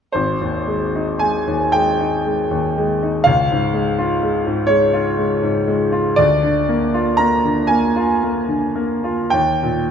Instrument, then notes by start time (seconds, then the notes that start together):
grand piano
0.12 G#1 C5
0.41 D#2
0.67 G#3
0.96 D#4
1.19 G#3 G#5
1.47 D#2
1.72 G#3 G5
2.00 D#4
2.26 G#3
2.51 D#2
2.78 G#3
3.03 D#4
3.24 C#2 F5
3.52 G#2
3.74 G#3
3.98 F4
4.23 G#3
4.46 G#2
4.67 G#3 C#5
4.93 F4
5.18 G#3
5.42 G#2
5.68 G#3
5.92 F4
6.16 D2 D5
6.43 D3
6.69 A#3
6.94 F4
7.17 A#3 A#5
7.44 D3
7.67 A#3 G#5
7.96 F4
8.23 A#3
8.48 D3
8.76 A#3
9.04 F4
9.30 D#2 G5
9.63 A#2